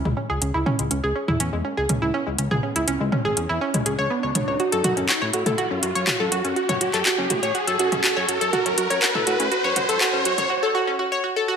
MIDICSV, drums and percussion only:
0, 0, Header, 1, 2, 480
1, 0, Start_track
1, 0, Tempo, 491803
1, 647, Time_signature, 4, 2, 24, 8
1, 11287, End_track
2, 0, Start_track
2, 0, Title_t, "Drums"
2, 52, Note_on_c, 9, 45, 85
2, 149, Note_off_c, 9, 45, 0
2, 407, Note_on_c, 9, 42, 110
2, 504, Note_off_c, 9, 42, 0
2, 647, Note_on_c, 9, 45, 86
2, 745, Note_off_c, 9, 45, 0
2, 771, Note_on_c, 9, 42, 65
2, 869, Note_off_c, 9, 42, 0
2, 886, Note_on_c, 9, 42, 110
2, 984, Note_off_c, 9, 42, 0
2, 1251, Note_on_c, 9, 45, 90
2, 1349, Note_off_c, 9, 45, 0
2, 1367, Note_on_c, 9, 42, 112
2, 1465, Note_off_c, 9, 42, 0
2, 1847, Note_on_c, 9, 42, 109
2, 1847, Note_on_c, 9, 45, 87
2, 1944, Note_off_c, 9, 42, 0
2, 1944, Note_off_c, 9, 45, 0
2, 2327, Note_on_c, 9, 42, 108
2, 2425, Note_off_c, 9, 42, 0
2, 2451, Note_on_c, 9, 45, 88
2, 2549, Note_off_c, 9, 45, 0
2, 2691, Note_on_c, 9, 42, 61
2, 2789, Note_off_c, 9, 42, 0
2, 2807, Note_on_c, 9, 42, 106
2, 2904, Note_off_c, 9, 42, 0
2, 3048, Note_on_c, 9, 45, 87
2, 3145, Note_off_c, 9, 45, 0
2, 3288, Note_on_c, 9, 42, 111
2, 3385, Note_off_c, 9, 42, 0
2, 3652, Note_on_c, 9, 42, 65
2, 3652, Note_on_c, 9, 45, 89
2, 3749, Note_off_c, 9, 42, 0
2, 3749, Note_off_c, 9, 45, 0
2, 3766, Note_on_c, 9, 42, 113
2, 3864, Note_off_c, 9, 42, 0
2, 4247, Note_on_c, 9, 42, 109
2, 4247, Note_on_c, 9, 45, 87
2, 4344, Note_off_c, 9, 42, 0
2, 4344, Note_off_c, 9, 45, 0
2, 4486, Note_on_c, 9, 42, 32
2, 4584, Note_off_c, 9, 42, 0
2, 4610, Note_on_c, 9, 42, 61
2, 4708, Note_off_c, 9, 42, 0
2, 4726, Note_on_c, 9, 42, 105
2, 4726, Note_on_c, 9, 45, 90
2, 4824, Note_off_c, 9, 42, 0
2, 4824, Note_off_c, 9, 45, 0
2, 4851, Note_on_c, 9, 42, 43
2, 4948, Note_off_c, 9, 42, 0
2, 4967, Note_on_c, 9, 39, 113
2, 4967, Note_on_c, 9, 42, 32
2, 5065, Note_off_c, 9, 39, 0
2, 5065, Note_off_c, 9, 42, 0
2, 5207, Note_on_c, 9, 42, 105
2, 5304, Note_off_c, 9, 42, 0
2, 5330, Note_on_c, 9, 42, 44
2, 5330, Note_on_c, 9, 45, 93
2, 5428, Note_off_c, 9, 42, 0
2, 5428, Note_off_c, 9, 45, 0
2, 5447, Note_on_c, 9, 42, 33
2, 5545, Note_off_c, 9, 42, 0
2, 5687, Note_on_c, 9, 42, 106
2, 5785, Note_off_c, 9, 42, 0
2, 5812, Note_on_c, 9, 42, 41
2, 5909, Note_off_c, 9, 42, 0
2, 5927, Note_on_c, 9, 39, 109
2, 5927, Note_on_c, 9, 42, 33
2, 5927, Note_on_c, 9, 45, 92
2, 6025, Note_off_c, 9, 39, 0
2, 6025, Note_off_c, 9, 42, 0
2, 6025, Note_off_c, 9, 45, 0
2, 6167, Note_on_c, 9, 42, 107
2, 6265, Note_off_c, 9, 42, 0
2, 6291, Note_on_c, 9, 42, 42
2, 6389, Note_off_c, 9, 42, 0
2, 6407, Note_on_c, 9, 42, 33
2, 6504, Note_off_c, 9, 42, 0
2, 6531, Note_on_c, 9, 42, 61
2, 6531, Note_on_c, 9, 45, 96
2, 6629, Note_off_c, 9, 42, 0
2, 6629, Note_off_c, 9, 45, 0
2, 6646, Note_on_c, 9, 42, 101
2, 6744, Note_off_c, 9, 42, 0
2, 6771, Note_on_c, 9, 39, 36
2, 6771, Note_on_c, 9, 42, 45
2, 6869, Note_off_c, 9, 39, 0
2, 6869, Note_off_c, 9, 42, 0
2, 6886, Note_on_c, 9, 39, 115
2, 6886, Note_on_c, 9, 42, 34
2, 6984, Note_off_c, 9, 39, 0
2, 6984, Note_off_c, 9, 42, 0
2, 7126, Note_on_c, 9, 42, 101
2, 7126, Note_on_c, 9, 45, 98
2, 7224, Note_off_c, 9, 42, 0
2, 7224, Note_off_c, 9, 45, 0
2, 7251, Note_on_c, 9, 42, 45
2, 7349, Note_off_c, 9, 42, 0
2, 7366, Note_on_c, 9, 42, 34
2, 7464, Note_off_c, 9, 42, 0
2, 7491, Note_on_c, 9, 42, 61
2, 7588, Note_off_c, 9, 42, 0
2, 7607, Note_on_c, 9, 42, 102
2, 7705, Note_off_c, 9, 42, 0
2, 7731, Note_on_c, 9, 42, 44
2, 7731, Note_on_c, 9, 45, 98
2, 7828, Note_off_c, 9, 42, 0
2, 7828, Note_off_c, 9, 45, 0
2, 7847, Note_on_c, 9, 39, 116
2, 7847, Note_on_c, 9, 42, 34
2, 7945, Note_off_c, 9, 39, 0
2, 7945, Note_off_c, 9, 42, 0
2, 8087, Note_on_c, 9, 42, 102
2, 8184, Note_off_c, 9, 42, 0
2, 8211, Note_on_c, 9, 42, 46
2, 8308, Note_off_c, 9, 42, 0
2, 8326, Note_on_c, 9, 42, 35
2, 8326, Note_on_c, 9, 45, 100
2, 8424, Note_off_c, 9, 42, 0
2, 8424, Note_off_c, 9, 45, 0
2, 8451, Note_on_c, 9, 42, 59
2, 8549, Note_off_c, 9, 42, 0
2, 8566, Note_on_c, 9, 42, 104
2, 8664, Note_off_c, 9, 42, 0
2, 8691, Note_on_c, 9, 42, 47
2, 8789, Note_off_c, 9, 42, 0
2, 8807, Note_on_c, 9, 39, 119
2, 8807, Note_on_c, 9, 42, 35
2, 8904, Note_off_c, 9, 39, 0
2, 8904, Note_off_c, 9, 42, 0
2, 8931, Note_on_c, 9, 45, 101
2, 9028, Note_off_c, 9, 45, 0
2, 9046, Note_on_c, 9, 42, 100
2, 9144, Note_off_c, 9, 42, 0
2, 9172, Note_on_c, 9, 42, 47
2, 9269, Note_off_c, 9, 42, 0
2, 9287, Note_on_c, 9, 42, 36
2, 9385, Note_off_c, 9, 42, 0
2, 9527, Note_on_c, 9, 42, 101
2, 9527, Note_on_c, 9, 45, 96
2, 9625, Note_off_c, 9, 42, 0
2, 9625, Note_off_c, 9, 45, 0
2, 9652, Note_on_c, 9, 42, 47
2, 9750, Note_off_c, 9, 42, 0
2, 9767, Note_on_c, 9, 39, 117
2, 9767, Note_on_c, 9, 42, 34
2, 9865, Note_off_c, 9, 39, 0
2, 9865, Note_off_c, 9, 42, 0
2, 10007, Note_on_c, 9, 42, 100
2, 10105, Note_off_c, 9, 42, 0
2, 10131, Note_on_c, 9, 42, 48
2, 10131, Note_on_c, 9, 45, 101
2, 10229, Note_off_c, 9, 42, 0
2, 10229, Note_off_c, 9, 45, 0
2, 11287, End_track
0, 0, End_of_file